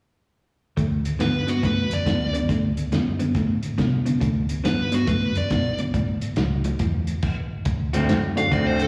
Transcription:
0.77 1.11 D2 medium
0.77 1.17 D3 medium
0.77 1.17 A3 medium
0.77 kick medium
0.77 closed hi-hat medium
1.05 closed hi-hat medium
1.19 1.54 G2 medium
1.19 1.45 D3 medium
1.19 1.45 B3 medium
1.19 1.49 B4 medium
1.19 snare medium
1.19 closed hi-hat medium
1.47 1.61 D3 medium
1.47 1.62 B3 medium
1.47 1.63 F#4 medium
1.47 closed hi-hat soft
1.63 1.85 F#2 medium
1.63 2.03 D3 medium
1.63 2.04 A3 medium
1.63 1.92 B4 medium
1.63 kick medium
1.63 snare soft
1.63 closed hi-hat medium
1.90 2.03 F#2 medium
1.90 2.35 D5 medium
1.90 closed hi-hat medium
2.06 2.40 D2 medium
2.06 2.31 D3 medium
2.06 2.31 B3 medium
2.06 kick medium
2.06 snare medium
2.06 closed hi-hat medium
2.33 2.47 D3 medium
2.33 2.48 B3 medium
2.33 closed hi-hat soft
2.49 2.83 D2 medium
2.49 2.89 D3 medium
2.49 2.89 A3 medium
2.49 kick medium
2.49 closed hi-hat medium
2.77 closed hi-hat medium
2.92 3.26 F#2 medium
2.92 3.17 D3 medium
2.92 3.18 B3 medium
2.92 snare medium
2.92 closed hi-hat medium
3.19 3.34 D3 medium
3.19 3.34 B3 medium
3.19 closed hi-hat medium
3.35 3.69 A2 medium
3.35 3.75 D3 medium
3.35 3.75 A3 medium
3.35 kick medium
3.35 snare soft
3.35 closed hi-hat medium
3.63 closed hi-hat medium
3.78 4.12 C3 medium
3.78 4.03 D3 medium
3.78 4.03 B3 medium
3.78 kick medium
3.78 snare medium
3.78 closed hi-hat medium
4.06 4.19 D3 medium
4.06 4.20 B3 medium
4.06 closed hi-hat soft
4.20 4.56 D2 medium
4.20 4.61 D3 medium
4.20 4.61 A3 medium
4.20 kick medium
4.20 closed hi-hat medium
4.49 closed hi-hat medium
4.64 4.99 G2 medium
4.64 4.89 D3 medium
4.64 4.89 B3 medium
4.64 4.93 B4 medium
4.64 snare medium
4.64 closed hi-hat medium
4.92 5.05 D3 medium
4.92 5.06 B3 medium
4.92 5.08 F#4 medium
4.92 closed hi-hat medium
5.07 5.30 F#2 medium
5.07 5.47 D3 medium
5.07 5.47 A3 medium
5.07 5.35 B4 medium
5.07 kick medium
5.07 closed hi-hat medium
5.35 5.48 F#2 medium
5.35 5.79 D5 medium
5.35 closed hi-hat medium
5.50 5.85 B1 medium
5.50 5.76 D3 medium
5.50 5.76 B3 medium
5.50 kick medium
5.50 snare medium
5.50 closed hi-hat medium
5.78 5.92 D3 medium
5.78 5.92 B3 medium
5.78 closed hi-hat soft
5.94 6.28 A1 medium
5.94 6.34 A2 medium
5.94 6.34 E3 medium
5.94 kick medium
5.94 closed hi-hat medium
6.21 closed hi-hat medium
6.36 6.71 C#2 medium
6.36 6.62 A2 medium
6.36 6.62 F#3 medium
6.36 snare medium
6.36 closed hi-hat medium
6.64 6.78 A2 medium
6.64 6.79 F#3 medium
6.64 closed hi-hat soft
6.79 7.14 E2 medium
6.79 7.20 A2 medium
6.79 7.20 E3 medium
6.79 kick medium
6.79 closed hi-hat medium
7.07 closed hi-hat medium
7.22 kick medium
7.22 crash medium
7.65 8.01 D2 medium
7.65 kick medium
7.65 closed hi-hat medium
7.93 8.17 D3 medium
7.93 8.17 A3 medium
7.93 8.17 C4 medium
7.93 8.17 F#4 medium
7.93 closed hi-hat medium
8.08 8.43 F#2 medium
8.08 snare medium
8.08 closed hi-hat medium
8.36 8.50 A3 medium
8.36 8.50 C4 medium
8.36 8.50 D4 medium
8.36 8.50 F#4 medium
8.36 8.52 F5 medium
8.36 snare soft
8.36 closed hi-hat medium
8.51 8.86 D2 medium
8.51 8.83 D3 medium
8.51 8.84 A3 medium
8.51 8.84 C4 medium
8.51 8.84 F#4 medium
8.51 8.66 D5 medium
8.51 kick medium
8.51 closed hi-hat medium
8.67 8.82 C5 medium
8.79 8.88 A4 medium
8.79 closed hi-hat medium

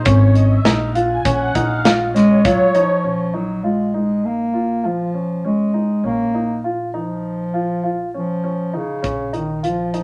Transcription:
0.05 0.56 G#1 loud
0.05 0.54 C#4 medium
0.05 kick loud
0.05 closed hi-hat medium
0.35 closed hi-hat medium
0.65 1.15 A#1 medium
0.65 0.90 D#4 medium
0.65 snare loud
0.65 closed hi-hat medium
0.95 1.20 F4 medium
0.95 closed hi-hat medium
1.25 1.50 A#1 medium
1.25 1.50 C#4 medium
1.25 kick loud
1.25 closed hi-hat medium
1.55 2.55 A#1 medium
1.55 1.80 D#4 medium
1.55 kick medium
1.55 closed hi-hat medium
1.85 2.09 F4 medium
1.85 snare loud
1.85 closed hi-hat medium
2.06 2.92 C#5 medium
2.14 2.46 G#3 medium
2.14 2.39 C#4 medium
2.14 snare soft
2.14 closed hi-hat medium
2.45 2.68 F#3 loud
2.45 2.69 F4 medium
2.45 kick loud
2.45 closed hi-hat medium
2.68 2.76 F#3 medium
2.75 3.37 F3 loud
2.75 2.99 D#4 medium
2.75 closed hi-hat medium
3.04 6.00 A#1 medium
3.04 3.28 C#4 medium
3.34 3.65 F#3 medium
3.34 3.58 D#4 medium
3.64 3.94 G#3 medium
3.64 3.88 F4 medium
3.94 4.26 G#3 medium
3.94 4.43 D#4 medium
4.25 4.87 A#3 medium
4.53 4.78 F4 medium
4.84 5.45 F3 medium
4.84 5.08 F4 medium
5.14 5.39 C#4 soft
5.44 6.01 G#3 medium
5.44 5.69 C#4 medium
5.74 5.98 D#4 medium
6.04 9.00 A#1 medium
6.04 6.64 A#3 medium
6.04 6.28 C#4 medium
6.34 6.59 D#4 medium
6.64 6.89 F4 medium
6.94 8.10 F3 medium
6.94 7.43 D#4 medium
7.54 7.78 F4 medium
7.84 8.08 F4 medium
8.14 8.78 F3 medium
8.14 8.39 C#4 medium
8.44 8.68 C#4 medium
8.73 9.35 C#3 medium
8.73 8.98 D#4 medium
9.03 10.03 A#1 medium
9.03 9.27 C#4 medium
9.03 kick medium
9.03 closed hi-hat soft
9.33 9.63 D#3 medium
9.33 9.58 D#4 medium
9.33 closed hi-hat soft
9.63 10.03 F3 medium
9.63 9.88 F4 medium
9.63 closed hi-hat medium
9.94 10.03 D#4 medium
9.94 closed hi-hat soft

